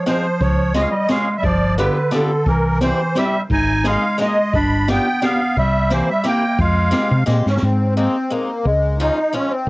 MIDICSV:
0, 0, Header, 1, 6, 480
1, 0, Start_track
1, 0, Key_signature, -4, "minor"
1, 0, Tempo, 343053
1, 564, Time_signature, 3, 2, 24, 8
1, 13567, End_track
2, 0, Start_track
2, 0, Title_t, "Accordion"
2, 0, Program_c, 0, 21
2, 100, Note_on_c, 0, 72, 79
2, 571, Note_on_c, 0, 73, 81
2, 587, Note_off_c, 0, 72, 0
2, 1047, Note_on_c, 0, 75, 83
2, 1061, Note_off_c, 0, 73, 0
2, 1138, Note_on_c, 0, 77, 73
2, 1154, Note_off_c, 0, 75, 0
2, 1249, Note_off_c, 0, 77, 0
2, 1250, Note_on_c, 0, 75, 78
2, 1528, Note_off_c, 0, 75, 0
2, 1538, Note_on_c, 0, 77, 74
2, 1874, Note_off_c, 0, 77, 0
2, 1921, Note_on_c, 0, 76, 65
2, 1990, Note_on_c, 0, 74, 82
2, 2007, Note_off_c, 0, 76, 0
2, 2441, Note_off_c, 0, 74, 0
2, 2488, Note_on_c, 0, 71, 73
2, 2976, Note_on_c, 0, 69, 66
2, 2979, Note_off_c, 0, 71, 0
2, 3466, Note_off_c, 0, 69, 0
2, 3467, Note_on_c, 0, 70, 83
2, 3907, Note_off_c, 0, 70, 0
2, 3948, Note_on_c, 0, 72, 77
2, 4437, Note_off_c, 0, 72, 0
2, 4446, Note_on_c, 0, 76, 77
2, 4778, Note_off_c, 0, 76, 0
2, 4929, Note_on_c, 0, 80, 90
2, 5412, Note_off_c, 0, 80, 0
2, 5416, Note_on_c, 0, 77, 79
2, 5849, Note_off_c, 0, 77, 0
2, 5893, Note_on_c, 0, 75, 79
2, 6343, Note_on_c, 0, 83, 84
2, 6374, Note_off_c, 0, 75, 0
2, 6838, Note_off_c, 0, 83, 0
2, 6863, Note_on_c, 0, 79, 89
2, 7305, Note_on_c, 0, 77, 84
2, 7336, Note_off_c, 0, 79, 0
2, 7796, Note_off_c, 0, 77, 0
2, 7810, Note_on_c, 0, 76, 90
2, 8269, Note_on_c, 0, 72, 77
2, 8284, Note_off_c, 0, 76, 0
2, 8526, Note_off_c, 0, 72, 0
2, 8531, Note_on_c, 0, 76, 86
2, 8748, Note_off_c, 0, 76, 0
2, 8754, Note_on_c, 0, 79, 92
2, 9234, Note_on_c, 0, 77, 79
2, 9235, Note_off_c, 0, 79, 0
2, 10129, Note_off_c, 0, 77, 0
2, 10457, Note_on_c, 0, 61, 83
2, 10670, Note_on_c, 0, 60, 67
2, 10675, Note_off_c, 0, 61, 0
2, 11111, Note_off_c, 0, 60, 0
2, 11132, Note_on_c, 0, 60, 91
2, 11621, Note_on_c, 0, 58, 71
2, 11631, Note_off_c, 0, 60, 0
2, 12092, Note_on_c, 0, 56, 93
2, 12113, Note_off_c, 0, 58, 0
2, 12567, Note_on_c, 0, 63, 90
2, 12586, Note_off_c, 0, 56, 0
2, 13061, Note_off_c, 0, 63, 0
2, 13070, Note_on_c, 0, 61, 90
2, 13296, Note_on_c, 0, 60, 90
2, 13324, Note_off_c, 0, 61, 0
2, 13521, Note_on_c, 0, 58, 95
2, 13528, Note_off_c, 0, 60, 0
2, 13567, Note_off_c, 0, 58, 0
2, 13567, End_track
3, 0, Start_track
3, 0, Title_t, "Steel-string acoustic guitar"
3, 0, Program_c, 1, 25
3, 84, Note_on_c, 1, 56, 63
3, 89, Note_on_c, 1, 60, 57
3, 101, Note_on_c, 1, 68, 61
3, 102, Note_on_c, 1, 65, 50
3, 343, Note_off_c, 1, 56, 0
3, 346, Note_off_c, 1, 60, 0
3, 349, Note_off_c, 1, 65, 0
3, 351, Note_off_c, 1, 68, 0
3, 1040, Note_on_c, 1, 56, 60
3, 1046, Note_on_c, 1, 61, 58
3, 1056, Note_on_c, 1, 65, 48
3, 1064, Note_on_c, 1, 68, 58
3, 1299, Note_off_c, 1, 56, 0
3, 1304, Note_off_c, 1, 61, 0
3, 1306, Note_off_c, 1, 65, 0
3, 1306, Note_off_c, 1, 68, 0
3, 1518, Note_on_c, 1, 56, 61
3, 1520, Note_on_c, 1, 61, 54
3, 1530, Note_on_c, 1, 65, 49
3, 1540, Note_on_c, 1, 68, 64
3, 1779, Note_off_c, 1, 56, 0
3, 1782, Note_off_c, 1, 61, 0
3, 1782, Note_off_c, 1, 65, 0
3, 1784, Note_off_c, 1, 68, 0
3, 2489, Note_on_c, 1, 62, 53
3, 2494, Note_on_c, 1, 59, 58
3, 2497, Note_on_c, 1, 65, 43
3, 2505, Note_on_c, 1, 67, 67
3, 2742, Note_off_c, 1, 59, 0
3, 2745, Note_off_c, 1, 62, 0
3, 2749, Note_off_c, 1, 65, 0
3, 2749, Note_off_c, 1, 67, 0
3, 2955, Note_on_c, 1, 59, 61
3, 2959, Note_on_c, 1, 62, 50
3, 2969, Note_on_c, 1, 65, 59
3, 2981, Note_on_c, 1, 67, 67
3, 3218, Note_off_c, 1, 59, 0
3, 3222, Note_off_c, 1, 62, 0
3, 3222, Note_off_c, 1, 65, 0
3, 3224, Note_off_c, 1, 67, 0
3, 3936, Note_on_c, 1, 55, 47
3, 3939, Note_on_c, 1, 60, 52
3, 3952, Note_on_c, 1, 67, 55
3, 3961, Note_on_c, 1, 64, 48
3, 4192, Note_off_c, 1, 55, 0
3, 4197, Note_off_c, 1, 60, 0
3, 4199, Note_off_c, 1, 64, 0
3, 4199, Note_off_c, 1, 67, 0
3, 4424, Note_on_c, 1, 55, 55
3, 4432, Note_on_c, 1, 60, 48
3, 4442, Note_on_c, 1, 67, 61
3, 4446, Note_on_c, 1, 64, 46
3, 4680, Note_off_c, 1, 55, 0
3, 4684, Note_off_c, 1, 60, 0
3, 4688, Note_off_c, 1, 64, 0
3, 4690, Note_off_c, 1, 67, 0
3, 5387, Note_on_c, 1, 56, 58
3, 5395, Note_on_c, 1, 58, 49
3, 5403, Note_on_c, 1, 63, 46
3, 5404, Note_on_c, 1, 68, 62
3, 5644, Note_off_c, 1, 56, 0
3, 5650, Note_off_c, 1, 58, 0
3, 5651, Note_off_c, 1, 63, 0
3, 5653, Note_off_c, 1, 68, 0
3, 5847, Note_on_c, 1, 56, 58
3, 5857, Note_on_c, 1, 58, 50
3, 5860, Note_on_c, 1, 63, 53
3, 5871, Note_on_c, 1, 68, 48
3, 6115, Note_off_c, 1, 56, 0
3, 6120, Note_off_c, 1, 58, 0
3, 6123, Note_off_c, 1, 63, 0
3, 6123, Note_off_c, 1, 68, 0
3, 6829, Note_on_c, 1, 62, 54
3, 6832, Note_on_c, 1, 59, 50
3, 6832, Note_on_c, 1, 65, 55
3, 6841, Note_on_c, 1, 67, 61
3, 7084, Note_off_c, 1, 59, 0
3, 7086, Note_off_c, 1, 62, 0
3, 7088, Note_off_c, 1, 67, 0
3, 7089, Note_off_c, 1, 65, 0
3, 7295, Note_on_c, 1, 62, 46
3, 7303, Note_on_c, 1, 65, 49
3, 7305, Note_on_c, 1, 67, 61
3, 7306, Note_on_c, 1, 59, 44
3, 7557, Note_off_c, 1, 59, 0
3, 7559, Note_off_c, 1, 62, 0
3, 7559, Note_off_c, 1, 65, 0
3, 7561, Note_off_c, 1, 67, 0
3, 8257, Note_on_c, 1, 58, 61
3, 8264, Note_on_c, 1, 60, 62
3, 8271, Note_on_c, 1, 67, 70
3, 8278, Note_on_c, 1, 64, 45
3, 8515, Note_off_c, 1, 58, 0
3, 8515, Note_off_c, 1, 60, 0
3, 8517, Note_off_c, 1, 64, 0
3, 8519, Note_off_c, 1, 67, 0
3, 8724, Note_on_c, 1, 58, 53
3, 8734, Note_on_c, 1, 60, 49
3, 8734, Note_on_c, 1, 64, 58
3, 8740, Note_on_c, 1, 67, 65
3, 8987, Note_off_c, 1, 58, 0
3, 8988, Note_off_c, 1, 60, 0
3, 8991, Note_off_c, 1, 64, 0
3, 8994, Note_off_c, 1, 67, 0
3, 9669, Note_on_c, 1, 56, 60
3, 9678, Note_on_c, 1, 60, 56
3, 9684, Note_on_c, 1, 65, 61
3, 9690, Note_on_c, 1, 67, 54
3, 9940, Note_off_c, 1, 56, 0
3, 9944, Note_off_c, 1, 60, 0
3, 9948, Note_off_c, 1, 65, 0
3, 9948, Note_off_c, 1, 67, 0
3, 10160, Note_on_c, 1, 56, 57
3, 10166, Note_on_c, 1, 60, 59
3, 10171, Note_on_c, 1, 65, 53
3, 10182, Note_on_c, 1, 67, 71
3, 10428, Note_off_c, 1, 56, 0
3, 10431, Note_off_c, 1, 60, 0
3, 10435, Note_off_c, 1, 65, 0
3, 10436, Note_off_c, 1, 67, 0
3, 11151, Note_on_c, 1, 56, 56
3, 11155, Note_on_c, 1, 58, 48
3, 11167, Note_on_c, 1, 63, 53
3, 11180, Note_on_c, 1, 60, 49
3, 11404, Note_off_c, 1, 56, 0
3, 11408, Note_off_c, 1, 58, 0
3, 11410, Note_off_c, 1, 63, 0
3, 11411, Note_off_c, 1, 60, 0
3, 11619, Note_on_c, 1, 56, 54
3, 11632, Note_on_c, 1, 60, 46
3, 11633, Note_on_c, 1, 58, 54
3, 11642, Note_on_c, 1, 63, 57
3, 11879, Note_off_c, 1, 56, 0
3, 11881, Note_off_c, 1, 58, 0
3, 11885, Note_off_c, 1, 60, 0
3, 11886, Note_off_c, 1, 63, 0
3, 12592, Note_on_c, 1, 53, 59
3, 12595, Note_on_c, 1, 56, 57
3, 12608, Note_on_c, 1, 65, 58
3, 12611, Note_on_c, 1, 61, 52
3, 12839, Note_off_c, 1, 53, 0
3, 12843, Note_off_c, 1, 56, 0
3, 12846, Note_off_c, 1, 61, 0
3, 12847, Note_off_c, 1, 65, 0
3, 13052, Note_on_c, 1, 53, 52
3, 13061, Note_on_c, 1, 61, 47
3, 13062, Note_on_c, 1, 56, 46
3, 13074, Note_on_c, 1, 65, 61
3, 13309, Note_off_c, 1, 53, 0
3, 13310, Note_off_c, 1, 56, 0
3, 13313, Note_off_c, 1, 61, 0
3, 13315, Note_off_c, 1, 65, 0
3, 13567, End_track
4, 0, Start_track
4, 0, Title_t, "Clarinet"
4, 0, Program_c, 2, 71
4, 94, Note_on_c, 2, 53, 61
4, 536, Note_off_c, 2, 53, 0
4, 581, Note_on_c, 2, 53, 78
4, 1019, Note_off_c, 2, 53, 0
4, 1051, Note_on_c, 2, 56, 72
4, 1146, Note_off_c, 2, 56, 0
4, 1153, Note_on_c, 2, 56, 61
4, 1249, Note_off_c, 2, 56, 0
4, 1270, Note_on_c, 2, 55, 76
4, 1511, Note_off_c, 2, 55, 0
4, 1538, Note_on_c, 2, 56, 87
4, 1874, Note_off_c, 2, 56, 0
4, 1935, Note_on_c, 2, 55, 60
4, 2008, Note_off_c, 2, 55, 0
4, 2022, Note_on_c, 2, 53, 87
4, 2459, Note_off_c, 2, 53, 0
4, 2503, Note_on_c, 2, 50, 73
4, 2939, Note_off_c, 2, 50, 0
4, 2985, Note_on_c, 2, 50, 70
4, 3423, Note_off_c, 2, 50, 0
4, 3459, Note_on_c, 2, 52, 86
4, 3902, Note_off_c, 2, 52, 0
4, 3942, Note_on_c, 2, 52, 67
4, 4386, Note_off_c, 2, 52, 0
4, 4441, Note_on_c, 2, 55, 68
4, 4775, Note_off_c, 2, 55, 0
4, 4917, Note_on_c, 2, 63, 89
4, 5359, Note_off_c, 2, 63, 0
4, 5417, Note_on_c, 2, 56, 74
4, 5849, Note_off_c, 2, 56, 0
4, 5886, Note_on_c, 2, 56, 70
4, 6323, Note_off_c, 2, 56, 0
4, 6370, Note_on_c, 2, 62, 96
4, 6805, Note_off_c, 2, 62, 0
4, 6860, Note_on_c, 2, 59, 73
4, 7289, Note_off_c, 2, 59, 0
4, 7316, Note_on_c, 2, 59, 83
4, 7754, Note_off_c, 2, 59, 0
4, 7804, Note_on_c, 2, 55, 88
4, 8235, Note_off_c, 2, 55, 0
4, 8292, Note_on_c, 2, 52, 72
4, 8513, Note_off_c, 2, 52, 0
4, 8540, Note_on_c, 2, 55, 72
4, 8732, Note_off_c, 2, 55, 0
4, 8771, Note_on_c, 2, 58, 80
4, 9198, Note_off_c, 2, 58, 0
4, 9242, Note_on_c, 2, 56, 88
4, 10134, Note_off_c, 2, 56, 0
4, 13567, End_track
5, 0, Start_track
5, 0, Title_t, "Fretless electric bass"
5, 0, Program_c, 3, 35
5, 568, Note_on_c, 3, 37, 71
5, 1190, Note_off_c, 3, 37, 0
5, 2005, Note_on_c, 3, 31, 78
5, 2628, Note_off_c, 3, 31, 0
5, 3444, Note_on_c, 3, 36, 71
5, 4074, Note_off_c, 3, 36, 0
5, 4904, Note_on_c, 3, 32, 77
5, 5530, Note_off_c, 3, 32, 0
5, 6344, Note_on_c, 3, 31, 82
5, 6967, Note_off_c, 3, 31, 0
5, 7788, Note_on_c, 3, 36, 71
5, 8404, Note_off_c, 3, 36, 0
5, 9215, Note_on_c, 3, 41, 83
5, 9695, Note_off_c, 3, 41, 0
5, 9954, Note_on_c, 3, 48, 76
5, 10153, Note_off_c, 3, 48, 0
5, 10180, Note_on_c, 3, 46, 64
5, 10412, Note_off_c, 3, 46, 0
5, 10441, Note_on_c, 3, 44, 52
5, 10639, Note_off_c, 3, 44, 0
5, 10669, Note_on_c, 3, 44, 69
5, 11291, Note_off_c, 3, 44, 0
5, 12107, Note_on_c, 3, 37, 78
5, 12723, Note_off_c, 3, 37, 0
5, 13567, End_track
6, 0, Start_track
6, 0, Title_t, "Drums"
6, 92, Note_on_c, 9, 38, 57
6, 92, Note_on_c, 9, 42, 46
6, 232, Note_off_c, 9, 38, 0
6, 232, Note_off_c, 9, 42, 0
6, 568, Note_on_c, 9, 36, 75
6, 572, Note_on_c, 9, 42, 39
6, 708, Note_off_c, 9, 36, 0
6, 712, Note_off_c, 9, 42, 0
6, 1042, Note_on_c, 9, 38, 64
6, 1042, Note_on_c, 9, 42, 51
6, 1182, Note_off_c, 9, 38, 0
6, 1182, Note_off_c, 9, 42, 0
6, 1526, Note_on_c, 9, 38, 54
6, 1526, Note_on_c, 9, 42, 33
6, 1666, Note_off_c, 9, 38, 0
6, 1666, Note_off_c, 9, 42, 0
6, 2003, Note_on_c, 9, 42, 43
6, 2004, Note_on_c, 9, 36, 83
6, 2143, Note_off_c, 9, 42, 0
6, 2144, Note_off_c, 9, 36, 0
6, 2487, Note_on_c, 9, 38, 60
6, 2626, Note_off_c, 9, 38, 0
6, 2964, Note_on_c, 9, 38, 52
6, 2964, Note_on_c, 9, 42, 43
6, 3104, Note_off_c, 9, 38, 0
6, 3104, Note_off_c, 9, 42, 0
6, 3448, Note_on_c, 9, 36, 77
6, 3448, Note_on_c, 9, 42, 39
6, 3588, Note_off_c, 9, 36, 0
6, 3588, Note_off_c, 9, 42, 0
6, 3930, Note_on_c, 9, 38, 58
6, 3930, Note_on_c, 9, 42, 46
6, 4070, Note_off_c, 9, 38, 0
6, 4070, Note_off_c, 9, 42, 0
6, 4412, Note_on_c, 9, 38, 55
6, 4412, Note_on_c, 9, 42, 43
6, 4552, Note_off_c, 9, 38, 0
6, 4552, Note_off_c, 9, 42, 0
6, 4895, Note_on_c, 9, 42, 45
6, 4899, Note_on_c, 9, 36, 79
6, 5035, Note_off_c, 9, 42, 0
6, 5039, Note_off_c, 9, 36, 0
6, 5378, Note_on_c, 9, 38, 68
6, 5378, Note_on_c, 9, 42, 48
6, 5517, Note_off_c, 9, 38, 0
6, 5517, Note_off_c, 9, 42, 0
6, 5871, Note_on_c, 9, 38, 47
6, 5871, Note_on_c, 9, 42, 37
6, 6011, Note_off_c, 9, 38, 0
6, 6011, Note_off_c, 9, 42, 0
6, 6349, Note_on_c, 9, 36, 78
6, 6350, Note_on_c, 9, 42, 44
6, 6489, Note_off_c, 9, 36, 0
6, 6490, Note_off_c, 9, 42, 0
6, 6830, Note_on_c, 9, 38, 62
6, 6830, Note_on_c, 9, 42, 44
6, 6970, Note_off_c, 9, 38, 0
6, 6970, Note_off_c, 9, 42, 0
6, 7311, Note_on_c, 9, 38, 57
6, 7451, Note_off_c, 9, 38, 0
6, 7788, Note_on_c, 9, 36, 62
6, 7791, Note_on_c, 9, 42, 45
6, 7928, Note_off_c, 9, 36, 0
6, 7931, Note_off_c, 9, 42, 0
6, 8259, Note_on_c, 9, 38, 55
6, 8259, Note_on_c, 9, 42, 51
6, 8399, Note_off_c, 9, 38, 0
6, 8399, Note_off_c, 9, 42, 0
6, 8742, Note_on_c, 9, 38, 51
6, 8742, Note_on_c, 9, 42, 40
6, 8882, Note_off_c, 9, 38, 0
6, 8882, Note_off_c, 9, 42, 0
6, 9216, Note_on_c, 9, 36, 64
6, 9216, Note_on_c, 9, 42, 43
6, 9356, Note_off_c, 9, 36, 0
6, 9356, Note_off_c, 9, 42, 0
6, 9696, Note_on_c, 9, 38, 73
6, 9696, Note_on_c, 9, 42, 44
6, 9836, Note_off_c, 9, 38, 0
6, 9836, Note_off_c, 9, 42, 0
6, 10189, Note_on_c, 9, 38, 50
6, 10189, Note_on_c, 9, 42, 43
6, 10329, Note_off_c, 9, 38, 0
6, 10329, Note_off_c, 9, 42, 0
6, 10452, Note_on_c, 9, 38, 44
6, 10592, Note_off_c, 9, 38, 0
6, 10594, Note_on_c, 9, 38, 66
6, 10734, Note_off_c, 9, 38, 0
6, 13567, End_track
0, 0, End_of_file